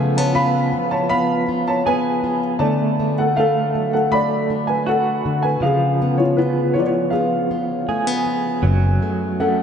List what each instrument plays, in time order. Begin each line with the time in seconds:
Already playing: steel-string acoustic guitar C#3 F3 F4 G#4, clean electric guitar F3, grand piano B4 G#5
0.00 steel-string acoustic guitar A3
0.17 steel-string acoustic guitar B3, grand piano C#5 A5
0.34 clean electric guitar B3, steel-string acoustic guitar F4, grand piano F5 B5
0.73 steel-string acoustic guitar F3
0.91 grand piano C#5 A5
1.09 steel-string acoustic guitar B3, grand piano F5 B5
1.49 steel-string acoustic guitar F4
1.68 grand piano C#5 A5
1.86 steel-string acoustic guitar B3, clean electric guitar G#4, grand piano B4 G#5
2.24 steel-string acoustic guitar F4
2.59 steel-string acoustic guitar D3, clean electric guitar A3, grand piano D5 A5
3.00 steel-string acoustic guitar A3
3.18 grand piano A4 F#5
3.36 clean electric guitar A3, steel-string acoustic guitar D4, grand piano A4 F5
3.75 steel-string acoustic guitar F#3
3.93 grand piano A4 F#5
4.12 steel-string acoustic guitar A3, grand piano D5 B5
4.50 steel-string acoustic guitar D4
4.67 grand piano B4 G#5
4.86 clean electric guitar F#4, grand piano A4 F#5
5.25 steel-string acoustic guitar D3
5.43 grand piano B4 G#5
5.61 steel-string acoustic guitar C#3, clean electric guitar F3, grand piano G#4 F5
6.02 steel-string acoustic guitar B3
6.18 grand piano F4 C#5
6.37 clean electric guitar B3, grand piano F4 B4, steel-string acoustic guitar F4
6.74 steel-string acoustic guitar F3, grand piano F4 C#5
6.79 grand piano D5
6.87 grand piano F4 C#5
7.10 steel-string acoustic guitar B3, grand piano G#4 F5
7.51 steel-string acoustic guitar F4
7.89 steel-string acoustic guitar A3, clean electric guitar G#4
8.07 steel-string acoustic guitar B3
8.26 steel-string acoustic guitar F4
8.62 fretless electric bass F#1, steel-string acoustic guitar F#2, clean electric guitar F#3
9.02 steel-string acoustic guitar A3
9.40 clean electric guitar A3, steel-string acoustic guitar C#4, grand piano A4 F#5